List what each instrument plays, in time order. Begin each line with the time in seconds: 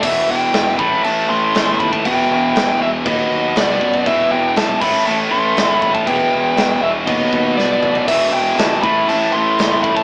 0.03 fingered electric bass E1, overdriven electric guitar E2 B2 E3, lead electric guitar E5, kick, crash
0.29 fingered electric bass E1, lead electric guitar G5
0.53 fingered electric bass E1, snare, crash
0.78 fingered electric bass A1, overdriven electric guitar A2 E3 A3, lead electric guitar B5, kick
1.04 fingered electric bass A1, lead electric guitar A5, crash
1.30 fingered electric bass A1, lead electric guitar C6
1.55 fingered electric bass G1, snare, crash
1.80 fingered electric bass D#2, lead electric guitar B5, kick
1.92 lead electric guitar A5, kick
2.05 fingered electric bass E1, overdriven electric guitar E2 B2 E3, lead electric guitar G5, kick, crash
2.31 fingered electric bass E1
2.56 fingered electric bass E1, lead electric guitar G5, snare, crash
2.81 fingered electric bass E1, lead electric guitar E5
3.05 fingered electric bass D#2, overdriven electric guitar B2 F#3 B3, lead electric guitar D#5, kick, crash
3.31 fingered electric bass D#2
3.56 fingered electric bass C2, lead electric guitar D5, snare, crash
3.81 fingered electric bass F#2, kick
3.94 kick
4.06 fingered electric bass E1, overdriven electric guitar E2 B2 E3, lead electric guitar E5, kick, crash
4.31 fingered electric bass E1, lead electric guitar G5
4.49 lead electric guitar G5
4.56 fingered electric bass B1, lead electric guitar A5, snare, crash
4.81 fingered electric bass A1, overdriven electric guitar A2 E3 A3, lead electric guitar B5, kick, crash
5.07 fingered electric bass A1, lead electric guitar A5, crash
5.31 fingered electric bass A1, lead electric guitar C6
5.57 fingered electric bass G1, snare, crash
5.70 lead electric guitar B5
5.82 fingered electric bass A1, lead electric guitar B5, kick
5.94 lead electric guitar A5, kick
6.07 fingered electric bass E1, overdriven electric guitar E2 B2 E3, lead electric guitar G5, kick, crash
6.33 fingered electric bass E1
6.57 fingered electric bass E1, snare, crash
6.82 fingered electric bass E1, lead electric guitar E5
7.06 fingered electric bass D#2, overdriven electric guitar B2 F#3 B3, lead electric guitar D#5, kick, crash
7.33 fingered electric bass D#2, kick
7.57 fingered electric bass C2, lead electric guitar D5, snare
7.83 fingered electric bass A1, mid tom
7.95 floor tom
8.07 fingered electric bass E1, overdriven electric guitar E2 B2 E3, lead electric guitar E5, kick, crash
8.32 fingered electric bass E1, lead electric guitar G5
8.58 fingered electric bass G1, lead electric guitar A5, snare, crash
8.83 fingered electric bass A1, overdriven electric guitar A2 E3 A3, lead electric guitar B5, kick
9.09 fingered electric bass A1, lead electric guitar A5, crash
9.33 fingered electric bass A1, lead electric guitar C6
9.59 fingered electric bass G1, snare, crash
9.83 fingered electric bass A1, lead electric guitar B5, kick
9.96 lead electric guitar A5, kick